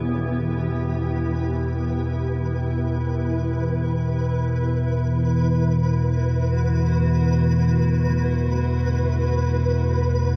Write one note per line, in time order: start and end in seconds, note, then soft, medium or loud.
0.00 10.36 E2 medium
0.00 10.36 B2 medium
0.00 3.57 E3 medium
0.00 5.22 B3 medium
0.00 10.36 E4 medium
0.00 3.58 G4 medium
0.00 10.36 B4 medium
3.59 10.36 D3 medium
3.89 10.36 A3 medium
4.35 10.36 F#4 medium